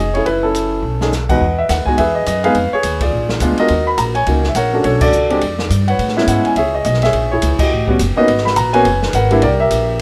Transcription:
Already playing: F1 G#4 C#5 D#5
0.14 A3 C#4 E4 G#4 C#5, ride
0.25 F#1 E4 B4, ride
0.43 C#4 E4 A4
0.55 hi-hat pedal, ride
0.82 B1
1.01 A3 C#4 D#4 G#4, snare
1.12 snare, hi-hat pedal
1.29 E2 G#3 B3 D#4 F#4 B4 D#5 F#5, kick, crash
1.41 E2
1.58 E5
1.69 D#2 F#5, snare, hi-hat pedal, ride
1.86 G#3 B3 D#4 F#4 G#5, muted upright bass stroke, kick
1.98 E2 G#4 B4 E5, ride
2.15 D#5
2.26 F#2 D#5, hi-hat pedal, ride
2.44 G#3 B3 D#4 G#4 B4 F5, ride
2.55 F2, ride
2.72 G#4 C#5, muted upright bass stroke
2.83 D#2, hi-hat pedal, ride
3.01 F4 G#4 D5, kick, ride
3.12 A#1
3.29 snare
3.40 D2 G#3 B3 D4 F4, hi-hat pedal, ride
3.57 F#4 A#4 D#5, ride
3.68 D#2, ride
3.87 B5
3.98 A#1 A#5, hi-hat pedal, ride
4.15 C#5 G#5, ride
4.26 C#2 A#3 C#4 D#4 F#4, ride
4.44 snare
4.48 E5
4.55 A#1 A#4 C#5 F#5, hi-hat pedal, ride
4.73 A3 C#4 D4 F#4
4.84 B1 F#4 A4 C#5, ride
5.01 F#4 A4 D5, kick, crash
5.12 C#2, hi-hat pedal
5.30 G#3 C4 D4 G4, ride
5.41 F2, ride
5.59 snare
5.70 G2, hi-hat pedal, ride
5.88 B4 C#5 F#5, ride
5.99 A2, ride
6.08 snare
6.17 G#3 B3 C#4 E4 E5, snare
6.27 G#2 F#5, hi-hat pedal, ride
6.45 G#5, muted upright bass stroke, ride
6.56 C#2 G#4 C#5 E5, ride
6.75 D#5
6.84 B1 D#5, hi-hat pedal, ride
6.94 snare
7.02 G#4 C#5 E5, snare, ride
7.13 A#1, ride
7.31 E4 G#4 C#5
7.42 C#2, hi-hat pedal, ride
7.59 F#4 G4 D#5, kick, crash
7.71 A1
7.88 G3 B3 C#4 F#4, kick
7.99 F#1, hi-hat pedal, ride
8.16 A#3 B3 C#4 D#4 F#4 B4 D#5, muted upright bass stroke
8.28 G#1, ride
8.38 snare
8.45 B5, snare
8.56 A#1 A#5, hi-hat pedal, ride
8.73 A#3 B3 C#4 F#4 B4 C#5 G#5, ride
8.85 F#1, ride
9.02 snare
9.13 G#1 A#4 B4 F#5, hi-hat pedal, ride
9.31 G3 A#3 D4 E4, ride
9.42 C2 G4 A#4 D5, ride
9.60 G4 A#4 E5
9.70 A#1, hi-hat pedal, ride

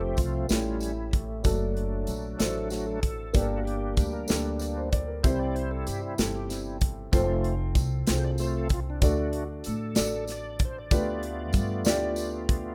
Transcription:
Already playing: F1 F3 A3 C4 F4 A4
0.01 G4
0.17 C2 F4, kick, closed hi-hat, tambourine
0.48 A1 A2 G3 A3 A#3 C#4 E4 G4, snare, closed hi-hat, tambourine
0.56 C#4
0.80 E4, closed hi-hat, tambourine
1.11 A3, kick, closed hi-hat
1.44 F#1 F#3 A3 D4 F#4 A4, kick, closed hi-hat, tambourine
1.77 closed hi-hat
2.07 A#1, closed hi-hat, tambourine
2.38 A1 A3 D4 E4 A4 C5, snare, closed hi-hat, tambourine
2.46 F#4
2.70 F#3 A3 D4 F#4, snare, closed hi-hat, tambourine
2.87 A4
3.02 A4, kick, closed hi-hat
3.33 G1 G2 G3 A#3 D4 G4 A4, kick, closed hi-hat, tambourine
3.42 A#4
3.58 F#4
3.65 G4, closed hi-hat
3.97 D2 G4, kick, closed hi-hat, tambourine
4.13 A#4
4.28 D2 A#3 D4 G4 A4, snare, closed hi-hat, tambourine
4.59 G3 A#3 D4, closed hi-hat, tambourine
4.77 C5
4.92 D5, kick, closed hi-hat
5.08 A#4
5.23 C2 C3 G3 C4 E4 G4 C5, kick, closed hi-hat, tambourine
5.39 D5
5.55 C5, closed hi-hat
5.71 A4
5.87 G2 G4, closed hi-hat, tambourine
6.01 E4
6.18 G1 C4 E4 G4 A4, snare, closed hi-hat, tambourine
6.36 G4
6.49 G3 C4 E4, snare, closed hi-hat, tambourine
6.81 kick, closed hi-hat
7.12 F1 A3 C4 F4 A4 C5, kick, closed hi-hat, tambourine
7.44 closed hi-hat
7.75 C2, kick, closed hi-hat, tambourine
8.07 C2 C4 F4 G#4 C5, snare, closed hi-hat, tambourine
8.15 A4
8.24 D5
8.38 A3 C4 F4 C5, closed hi-hat, tambourine
8.57 A4
8.69 kick, closed hi-hat
8.73 F4
8.90 D4
9.02 D2 D3 A3 D4 F#4 A4 D5, kick, closed hi-hat, tambourine
9.19 F#4
9.33 closed hi-hat
9.64 A2 A4, closed hi-hat, tambourine
9.95 A1 D4 F#4 A4 D5, snare, closed hi-hat, tambourine
10.27 snare, closed hi-hat, tambourine
10.32 D5
10.59 kick, closed hi-hat
10.65 C5
10.78 D5
10.91 D2 D3 A3 B3 D4 F4 G4 B4, kick, closed hi-hat, tambourine
11.23 closed hi-hat
11.53 G2, kick, closed hi-hat, tambourine
11.85 D2 D4 F4 G4 D5, snare, closed hi-hat, tambourine
12.16 closed hi-hat, tambourine
12.49 kick, closed hi-hat

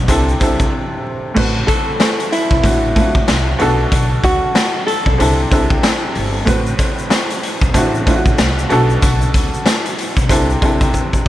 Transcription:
Already playing: B2 B3 D4 F#4 A4
0.08 C2 C3 C4 D4 E4 A4, kick, closed hi-hat, shaker
0.29 shaker
0.40 C2 C3 C4 D4 E4 A4, kick, closed hi-hat, shaker
0.60 kick, shaker
1.34 A1 A2 A3 C4 F#4 B4, kick, crash
1.67 A4, kick, closed hi-hat
2.00 snare, closed hi-hat
2.20 closed hi-hat
2.32 E4, closed hi-hat
2.51 C2, kick
2.63 A1 A2 A3 C4 D4 E4 F#4, kick, closed hi-hat
2.95 A2 A3 C4 D4 E4 F4, kick, closed hi-hat
3.05 F#4
3.15 A1, kick
3.28 C2, snare, closed hi-hat
3.59 B1 B2 B3 D4 F#4 A4, closed hi-hat
3.92 B1, kick, closed hi-hat
4.23 D2 F#4, kick, closed hi-hat
4.55 snare, closed hi-hat
4.86 A4, closed hi-hat
5.06 B1, kick
5.18 C2 C3 C4 D4 E4 A4, closed hi-hat
5.51 C2 C3 C4 D4 E4 A4, kick, closed hi-hat
5.70 kick
5.83 snare, closed hi-hat
6.15 G1, open hi-hat
6.45 A1 A2 A3 C4 F#4 B4, kick, closed hi-hat, shaker
6.66 shaker
6.79 kick, closed hi-hat, shaker
6.98 shaker
7.10 snare, closed hi-hat, shaker
7.30 closed hi-hat, shaker
7.43 closed hi-hat
7.61 C2, kick, shaker
7.74 A1 A2 A3 C4 D4 E4 F#4, kick, closed hi-hat, shaker
7.95 shaker
8.06 A2 A3 C4 D4 E4 F4, kick, closed hi-hat
8.15 F#4
8.26 A1, kick, shaker
8.38 C2, snare, closed hi-hat, shaker
8.59 shaker
8.69 B1 B2 B3 D4 F#4 A4, closed hi-hat
8.90 shaker
9.02 B1, kick, closed hi-hat, shaker
9.22 shaker
9.34 D2, kick, closed hi-hat, shaker
9.54 shaker
9.66 snare, closed hi-hat, shaker
9.86 closed hi-hat, shaker
9.99 closed hi-hat
10.17 B1, kick, shaker
10.29 C2 C3 C4 D4 E4 A4, kick, closed hi-hat, shaker
10.50 shaker
10.61 C2 C3 C4 D4 E4 A4, kick, closed hi-hat
10.81 kick, closed hi-hat, shaker
10.94 kick, shaker
11.13 kick, shaker

